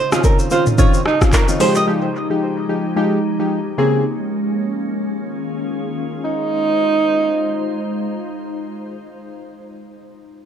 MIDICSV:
0, 0, Header, 1, 6, 480
1, 0, Start_track
1, 0, Key_signature, -4, "major"
1, 0, Tempo, 545455
1, 1648, Time_signature, 4, 2, 24, 8
1, 9200, End_track
2, 0, Start_track
2, 0, Title_t, "Nylon-string guitar"
2, 0, Program_c, 0, 24
2, 115, Note_on_c, 0, 68, 77
2, 191, Note_off_c, 0, 68, 0
2, 215, Note_on_c, 0, 70, 90
2, 322, Note_off_c, 0, 70, 0
2, 455, Note_on_c, 0, 72, 81
2, 562, Note_off_c, 0, 72, 0
2, 695, Note_on_c, 0, 73, 84
2, 882, Note_off_c, 0, 73, 0
2, 1175, Note_on_c, 0, 70, 93
2, 1282, Note_off_c, 0, 70, 0
2, 1415, Note_on_c, 0, 72, 83
2, 1522, Note_off_c, 0, 72, 0
2, 1554, Note_on_c, 0, 75, 91
2, 1631, Note_off_c, 0, 75, 0
2, 9200, End_track
3, 0, Start_track
3, 0, Title_t, "Alto saxophone"
3, 0, Program_c, 1, 65
3, 115, Note_on_c, 1, 65, 77
3, 197, Note_off_c, 1, 65, 0
3, 456, Note_on_c, 1, 65, 79
3, 571, Note_off_c, 1, 65, 0
3, 938, Note_on_c, 1, 63, 88
3, 1052, Note_off_c, 1, 63, 0
3, 5497, Note_on_c, 1, 63, 100
3, 6897, Note_off_c, 1, 63, 0
3, 9200, End_track
4, 0, Start_track
4, 0, Title_t, "Ambient pad"
4, 0, Program_c, 2, 92
4, 0, Note_on_c, 2, 49, 80
4, 0, Note_on_c, 2, 63, 76
4, 0, Note_on_c, 2, 65, 87
4, 0, Note_on_c, 2, 72, 72
4, 1372, Note_off_c, 2, 65, 0
4, 1372, Note_off_c, 2, 72, 0
4, 1391, Note_off_c, 2, 49, 0
4, 1391, Note_off_c, 2, 63, 0
4, 1406, Note_on_c, 2, 67, 74
4, 1407, Note_on_c, 2, 53, 83
4, 1407, Note_on_c, 2, 63, 76
4, 1408, Note_on_c, 2, 56, 90
4, 3308, Note_off_c, 2, 53, 0
4, 3308, Note_off_c, 2, 63, 0
4, 3308, Note_off_c, 2, 67, 0
4, 3309, Note_off_c, 2, 56, 0
4, 3329, Note_on_c, 2, 61, 86
4, 3330, Note_on_c, 2, 56, 80
4, 3330, Note_on_c, 2, 58, 76
4, 4517, Note_off_c, 2, 56, 0
4, 4517, Note_off_c, 2, 58, 0
4, 4517, Note_off_c, 2, 61, 0
4, 4528, Note_on_c, 2, 61, 65
4, 4529, Note_on_c, 2, 51, 70
4, 4529, Note_on_c, 2, 65, 65
4, 4529, Note_on_c, 2, 68, 79
4, 5477, Note_off_c, 2, 65, 0
4, 5478, Note_off_c, 2, 61, 0
4, 5479, Note_off_c, 2, 51, 0
4, 5479, Note_off_c, 2, 68, 0
4, 5488, Note_on_c, 2, 56, 80
4, 5488, Note_on_c, 2, 63, 75
4, 5488, Note_on_c, 2, 65, 72
4, 5489, Note_on_c, 2, 72, 90
4, 8271, Note_off_c, 2, 65, 0
4, 8272, Note_off_c, 2, 56, 0
4, 8272, Note_off_c, 2, 63, 0
4, 8273, Note_off_c, 2, 72, 0
4, 9200, End_track
5, 0, Start_track
5, 0, Title_t, "Synth keys"
5, 0, Program_c, 3, 88
5, 105, Note_on_c, 3, 51, 78
5, 107, Note_on_c, 3, 60, 71
5, 108, Note_on_c, 3, 61, 73
5, 110, Note_on_c, 3, 65, 89
5, 422, Note_off_c, 3, 51, 0
5, 424, Note_off_c, 3, 60, 0
5, 424, Note_off_c, 3, 61, 0
5, 425, Note_off_c, 3, 65, 0
5, 446, Note_on_c, 3, 51, 79
5, 448, Note_on_c, 3, 60, 73
5, 450, Note_on_c, 3, 61, 69
5, 451, Note_on_c, 3, 65, 86
5, 671, Note_off_c, 3, 51, 0
5, 672, Note_off_c, 3, 60, 0
5, 673, Note_off_c, 3, 61, 0
5, 674, Note_off_c, 3, 65, 0
5, 685, Note_on_c, 3, 51, 101
5, 687, Note_on_c, 3, 60, 88
5, 689, Note_on_c, 3, 61, 86
5, 691, Note_on_c, 3, 65, 107
5, 876, Note_off_c, 3, 51, 0
5, 877, Note_off_c, 3, 60, 0
5, 878, Note_off_c, 3, 61, 0
5, 879, Note_off_c, 3, 65, 0
5, 1064, Note_on_c, 3, 51, 79
5, 1066, Note_on_c, 3, 60, 69
5, 1067, Note_on_c, 3, 61, 68
5, 1069, Note_on_c, 3, 65, 86
5, 1236, Note_off_c, 3, 51, 0
5, 1237, Note_off_c, 3, 60, 0
5, 1237, Note_off_c, 3, 61, 0
5, 1239, Note_off_c, 3, 65, 0
5, 1305, Note_on_c, 3, 51, 78
5, 1307, Note_on_c, 3, 60, 72
5, 1308, Note_on_c, 3, 61, 76
5, 1310, Note_on_c, 3, 65, 88
5, 1405, Note_on_c, 3, 53, 98
5, 1407, Note_on_c, 3, 56, 90
5, 1409, Note_on_c, 3, 63, 90
5, 1410, Note_on_c, 3, 67, 107
5, 1476, Note_off_c, 3, 51, 0
5, 1477, Note_off_c, 3, 60, 0
5, 1478, Note_off_c, 3, 61, 0
5, 1479, Note_off_c, 3, 65, 0
5, 1630, Note_off_c, 3, 53, 0
5, 1631, Note_off_c, 3, 56, 0
5, 1632, Note_off_c, 3, 63, 0
5, 1633, Note_off_c, 3, 67, 0
5, 1645, Note_on_c, 3, 53, 94
5, 1647, Note_on_c, 3, 56, 88
5, 1649, Note_on_c, 3, 63, 85
5, 1650, Note_on_c, 3, 67, 105
5, 1836, Note_off_c, 3, 53, 0
5, 1837, Note_off_c, 3, 56, 0
5, 1838, Note_off_c, 3, 63, 0
5, 1839, Note_off_c, 3, 67, 0
5, 2024, Note_on_c, 3, 53, 77
5, 2026, Note_on_c, 3, 56, 71
5, 2027, Note_on_c, 3, 63, 70
5, 2029, Note_on_c, 3, 67, 87
5, 2342, Note_off_c, 3, 53, 0
5, 2343, Note_off_c, 3, 56, 0
5, 2344, Note_off_c, 3, 63, 0
5, 2345, Note_off_c, 3, 67, 0
5, 2364, Note_on_c, 3, 53, 80
5, 2367, Note_on_c, 3, 56, 70
5, 2368, Note_on_c, 3, 63, 71
5, 2370, Note_on_c, 3, 67, 88
5, 2590, Note_off_c, 3, 53, 0
5, 2591, Note_off_c, 3, 56, 0
5, 2592, Note_off_c, 3, 63, 0
5, 2593, Note_off_c, 3, 67, 0
5, 2606, Note_on_c, 3, 53, 95
5, 2607, Note_on_c, 3, 56, 89
5, 2609, Note_on_c, 3, 63, 86
5, 2611, Note_on_c, 3, 67, 107
5, 2796, Note_off_c, 3, 53, 0
5, 2797, Note_off_c, 3, 56, 0
5, 2798, Note_off_c, 3, 63, 0
5, 2799, Note_off_c, 3, 67, 0
5, 2985, Note_on_c, 3, 53, 80
5, 2986, Note_on_c, 3, 56, 70
5, 2988, Note_on_c, 3, 63, 72
5, 2990, Note_on_c, 3, 67, 84
5, 3156, Note_off_c, 3, 53, 0
5, 3157, Note_off_c, 3, 56, 0
5, 3158, Note_off_c, 3, 63, 0
5, 3159, Note_off_c, 3, 67, 0
5, 3325, Note_on_c, 3, 49, 95
5, 3326, Note_on_c, 3, 58, 90
5, 3328, Note_on_c, 3, 60, 87
5, 3330, Note_on_c, 3, 68, 105
5, 3550, Note_off_c, 3, 49, 0
5, 3551, Note_off_c, 3, 58, 0
5, 3552, Note_off_c, 3, 60, 0
5, 3553, Note_off_c, 3, 68, 0
5, 9200, End_track
6, 0, Start_track
6, 0, Title_t, "Drums"
6, 107, Note_on_c, 9, 82, 59
6, 108, Note_on_c, 9, 37, 117
6, 195, Note_off_c, 9, 82, 0
6, 196, Note_off_c, 9, 37, 0
6, 208, Note_on_c, 9, 82, 76
6, 210, Note_on_c, 9, 36, 96
6, 296, Note_off_c, 9, 82, 0
6, 298, Note_off_c, 9, 36, 0
6, 345, Note_on_c, 9, 82, 53
6, 433, Note_off_c, 9, 82, 0
6, 444, Note_on_c, 9, 82, 53
6, 532, Note_off_c, 9, 82, 0
6, 584, Note_on_c, 9, 82, 46
6, 588, Note_on_c, 9, 45, 101
6, 672, Note_off_c, 9, 82, 0
6, 676, Note_off_c, 9, 45, 0
6, 689, Note_on_c, 9, 36, 122
6, 689, Note_on_c, 9, 82, 82
6, 777, Note_off_c, 9, 36, 0
6, 777, Note_off_c, 9, 82, 0
6, 826, Note_on_c, 9, 82, 60
6, 914, Note_off_c, 9, 82, 0
6, 929, Note_on_c, 9, 37, 97
6, 1017, Note_off_c, 9, 37, 0
6, 1068, Note_on_c, 9, 36, 98
6, 1069, Note_on_c, 9, 82, 53
6, 1071, Note_on_c, 9, 37, 104
6, 1156, Note_off_c, 9, 36, 0
6, 1157, Note_off_c, 9, 82, 0
6, 1159, Note_off_c, 9, 37, 0
6, 1168, Note_on_c, 9, 36, 88
6, 1168, Note_on_c, 9, 82, 80
6, 1169, Note_on_c, 9, 39, 96
6, 1256, Note_off_c, 9, 36, 0
6, 1256, Note_off_c, 9, 82, 0
6, 1257, Note_off_c, 9, 39, 0
6, 1307, Note_on_c, 9, 82, 58
6, 1395, Note_off_c, 9, 82, 0
6, 1410, Note_on_c, 9, 46, 81
6, 1410, Note_on_c, 9, 82, 58
6, 1498, Note_off_c, 9, 46, 0
6, 1498, Note_off_c, 9, 82, 0
6, 1539, Note_on_c, 9, 82, 58
6, 1627, Note_off_c, 9, 82, 0
6, 9200, End_track
0, 0, End_of_file